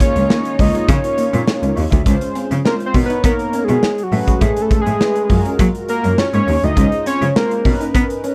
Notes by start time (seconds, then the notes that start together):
Already playing: D#3 G#3 A#3 D#4 F4 C#5
0.00 C#5, muted clean electric guitar stroke, kick, closed hi-hat
0.16 C#2 C#4, closed hi-hat
0.30 A#3, snare
0.45 closed hi-hat
0.59 C#2 A#3 D#4 F4 C#5 D#5, muted clean electric guitar stroke, kick, open hi-hat
0.75 G#3, closed hi-hat
0.89 C#3 C#5, kick, closed hi-hat
1.04 A#3 D#4 F4 C#5, closed hi-hat
1.18 A#3, closed hi-hat
1.33 A#2, closed hi-hat
1.47 muted clean electric guitar stroke, snare
1.63 C#2 C#4, closed hi-hat
1.77 D#2 D#4, open hi-hat
1.92 D2, kick, closed hi-hat
2.06 C#2 G#3 C#4 F4 C5, kick, closed hi-hat
2.21 muted clean electric guitar stroke, closed hi-hat
2.35 C4, closed hi-hat
2.51 C#3, closed hi-hat
2.64 G#3 C4 C#4 F4 A#4 C5, snare
2.80 muted clean electric guitar stroke, closed hi-hat
2.86 C5
2.94 B2 B3 D#4 A#4 C#5, kick, open hi-hat
3.05 B4
3.10 D#4, closed hi-hat
3.24 B3 A#4, muted clean electric guitar stroke, kick, closed hi-hat
3.39 closed hi-hat
3.53 C#4, closed hi-hat
3.64 G#4
3.69 B2 B3, closed hi-hat
3.83 muted clean electric guitar stroke, snare
3.98 closed hi-hat
4.03 F#4
4.11 A2 A3 C#4 G#4 B4, open hi-hat
4.28 G#3, kick, closed hi-hat
4.41 A2 A3 G#4, kick, closed hi-hat
4.56 muted clean electric guitar stroke, closed hi-hat
4.62 A4
4.71 G#3, kick, closed hi-hat
4.81 G#4
4.86 A2, closed hi-hat
5.00 G#3 A3 C#4 G#4 B4, snare
5.16 muted clean electric guitar stroke, closed hi-hat
5.29 F#2 G#3 F4 F#4 A#4, kick, open hi-hat
5.45 C#4, closed hi-hat
5.59 F#3 A#3, kick, closed hi-hat
5.75 closed hi-hat
5.89 A#4, muted clean electric guitar stroke, closed hi-hat
6.04 F#2 C#4, closed hi-hat
6.18 C#5, muted clean electric guitar stroke, snare
6.33 G#2 A#3 C#5, closed hi-hat
6.47 D#2 A#3, open hi-hat
6.63 D2 D#5, closed hi-hat
6.76 C#2 G#3 C#4 F4 C5, kick, closed hi-hat
6.92 muted clean electric guitar stroke, closed hi-hat
7.06 C4 C#5, closed hi-hat
7.22 C#3, closed hi-hat
7.35 G#3 C4 C#4 F4 A#4 C5, snare
7.51 muted clean electric guitar stroke, closed hi-hat
7.65 B2 C#4 D#4 A#4 B4, kick, open hi-hat
7.81 D#4, closed hi-hat
7.94 B3, muted clean electric guitar stroke, kick, closed hi-hat
8.10 closed hi-hat
8.24 C#4, closed hi-hat